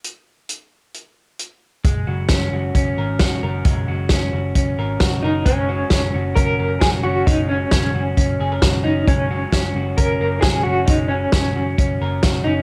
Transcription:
<<
  \new Staff \with { instrumentName = "Clean electric guitar" } { \time 4/4 \key fis \major \tempo 4 = 133 r1 | gis8 fis'8 cis'8 fis'8 cis'8 ais'8 fis'8 ais'8 | gis8 fis'8 cis'8 fis'8 cis'8 ais'8 fis'8 ais'8 | gis8 fis'8 cis'8 fis'8 cis'8 ais'8 fis'8 cis'8 |
gis8 fis'8 cis'8 fis'8 cis'8 gis'16 ais'16 fis'8 cis'8 | gis8 fis'8 cis'8 fis'8 cis'8 ais'8 fis'8 cis'8 | gis8 fis'8 cis'8 fis'8 cis'8 ais'8 fis'8 cis'8 | }
  \new Staff \with { instrumentName = "Clean electric guitar" } { \time 4/4 \key fis \major r1 | r1 | r2. r8 dis'8 | cis'4. r8 ais'4 gis'8 fis'8 |
dis'8 cis'4. r4. dis'8 | cis'4. r8 ais'4 gis'8 fis'8 | dis'8 cis'4. r4. dis'8 | }
  \new Staff \with { instrumentName = "Picked electric bass" } { \clef bass \time 4/4 \key fis \major r1 | fis,,8 fis,,8 fis,,8 fis,,8 fis,,8 gis,,8 fis,,8 fis,,8 | fis,,8 fis,,8 fis,,8 fis,,8 fis,,8 gis,,8 fis,,8 fis,,8 | fis,,4 fis,,8 fis,,8 fis,,8 fis,,8 fis,,8 fis,,8 |
fis,,4 fis,,8 fis,,8 fis,,8 fis,,8 fis,,8 fis,,8 | fis,,4 fis,,8 fis,,8 fis,,8 fis,,8 fis,,8 fis,,8 | fis,,4 fis,,8 fis,,8 fis,,8 fis,,8 fis,,8 fis,,8 | }
  \new DrumStaff \with { instrumentName = "Drums" } \drummode { \time 4/4 hh4 hh4 hh4 hh4 | <hh bd>4 <hh bd sn>4 <hh bd>4 <hh bd sn>4 | <hh bd>4 <hh bd sn>4 <hh bd>4 <hh bd sn>4 | <hh bd>4 <hh bd sn>4 <hh bd>4 <hh bd sn>4 |
<hh bd>4 <hh bd sn>4 <hh bd>4 <hh bd sn>4 | <hh bd>4 <hh bd sn>4 <hh bd>4 <hh bd sn>4 | <hh bd>4 <hh bd sn>4 <hh bd>4 <hh bd sn>4 | }
>>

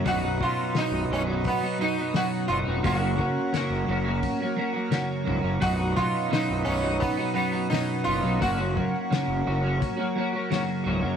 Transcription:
<<
  \new Staff \with { instrumentName = "Harmonium" } { \time 4/4 \key b \major \tempo 4 = 86 << { ais''1~ | ais''1~ | ais''1~ | ais''1 | } \\ { <b' dis''>1 | <ais' cis''>1 | <b' dis''>1 | <ais' cis''>1 | } >> }
  \new Staff \with { instrumentName = "Harmonium" } { \clef bass \time 4/4 \key b \major fis1~ | fis1 | fis1~ | fis1 | }
  \new Staff \with { instrumentName = "Sitar" } { \time 4/4 \key b \major fis'8 eis'8 dis'8 cis'8 b8 dis'8 fis'8 eis'8 | fis'2 r2 | fis'8 eis'8 dis'8 cis'8 b8 b8 dis'8 eis'8 | fis'2 r2 | }
  \new Staff \with { instrumentName = "Clean electric guitar" } { \clef bass \time 4/4 \key b \major <b,, fis, b, fis dis'>16 <b, fis dis'>16 <fis, b, fis dis'>8 <b,, fis, b, fis dis'>8 <fis, b, fis dis'>16 <b, fis dis'>8 <b, fis dis'>16 <fis, b, fis dis'>16 <b, fis dis'>16 <b,, fis, b, fis dis'>8 <fis, b, fis dis'>16 <b, fis dis'>16 | <fis, cis fis ais cis' fis'>16 <fis ais cis' fis'>16 <fis ais cis' fis'>8 <fis, cis fis ais cis' fis'>8 <fis ais cis' fis'>16 <fis ais cis' fis'>8 <fis ais cis' fis'>16 <fis ais cis' fis'>16 <fis ais cis' fis'>16 <fis, cis fis ais cis' fis'>8 <fis ais cis' fis'>16 <fis ais cis' fis'>16 | <b,, fis, b, fis dis'>16 <b, fis dis'>16 <fis, b, fis dis'>8 <b,, fis, b, fis dis'>8 <fis, b, fis dis'>16 <b, fis dis'>8 <b, fis dis'>16 <fis, b, fis dis'>16 <b, fis dis'>16 <b,, fis, b, fis dis'>8 <fis, b, fis dis'>16 <b, fis dis'>16 | <fis, cis fis ais cis' fis'>16 <fis ais cis' fis'>16 <fis ais cis' fis'>8 <fis, cis fis ais cis' fis'>8 <fis ais cis' fis'>16 <fis ais cis' fis'>8 <fis ais cis' fis'>16 <fis ais cis' fis'>16 <fis ais cis' fis'>16 <fis, cis fis ais cis' fis'>8 <fis ais cis' fis'>16 <fis ais cis' fis'>16 | }
  \new Staff \with { instrumentName = "Fingered electric bass" } { \clef bass \time 4/4 \key b \major b,,,8 r8. b,,,16 b,,,8 r4. fis,,16 eis,,16 | fis,,8 r8. fis,,16 fis,,8 r4. cis,,16 fis,,16 | b,,,8 r8. b,,,16 b,,,8 r4. fis,,16 b,,16 | fis,,8 r8. fis,,16 fis,,8 r4. cis,,16 fis,16 | }
  \new DrumStaff \with { instrumentName = "Drums" } \drummode { \time 4/4 <hho bd>8 bd8 <hho sn>4 <hho bd>4 <hho sn>4 | <hho bd>8 bd8 <hho sn>4 <hho bd>4 <hho sn>8 bd8 | <hho bd>8 bd8 <hho sn>4 <hho bd>4 <hho sn>4 | <hho bd>8 bd8 <hho sn>4 <hho bd>4 <hho sn>4 | }
>>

